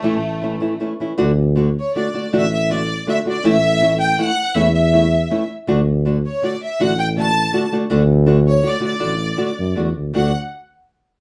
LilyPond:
<<
  \new Staff \with { instrumentName = "Violin section" } { \time 3/4 \key a \major \tempo 4 = 161 a2 r4 | \key d \major r4. cis''8 d''4 | e''8 e''8 d''4 e''8 d''8 | e''4. g''8 fis''4 |
e''8 e''2 r8 | r4. cis''8 d''8 e''8 | fis''8 g''8 a''4. r8 | r4. cis''8 d''8 d''8~ |
d''2 r4 | fis''8 r2 r8 | }
  \new Staff \with { instrumentName = "Nylon-string guitar" } { \time 3/4 \key a \major <a, e a cis' e'>8 r8 <e a cis' e'>8 <e a cis' e'>8 <e a cis' e'>8 <e a cis' e'>8 | \key d \major <d a d' fis'>8 r8 <d a d' fis'>8 r8 <d a d' fis'>8 <d a d' fis'>8 | <d a d' fis'>8 r8 <d a d' fis'>8 r8 <d a d' fis'>8 <d a d' fis'>8 | <a, e a cis' e'>8 r8 <e a cis' e'>8 r8 <e a cis' e'>8 r8 |
<a, e a cis' e'>8 r8 <e a cis' e'>8 r8 <e a cis' e'>8 r8 | <d a d' fis'>8 r8 <d a d' fis'>8 r8 <d a d' fis'>8 r8 | <d a d' fis'>8 r8 <d a d' fis'>8 r8 <d a d' fis'>8 <d a d' fis'>8 | <d a d' fis'>8 r8 <d a d' fis'>8 r8 <d a d' fis'>8 <d a d' fis'>8 |
<d a d' fis'>8 r8 <d a d' fis'>8 r8 <d a d' fis'>8 r8 | <d a d' fis'>8 r2 r8 | }
  \new Staff \with { instrumentName = "Tuba" } { \clef bass \time 3/4 \key a \major a,,2. | \key d \major d,2~ d,8 r8 | a,,2. | a,,2. |
e,2. | d,2~ d,8 r8 | a,,2. | d,2. |
a,,4. fis,8 e,8 d,8 | d,8 r2 r8 | }
>>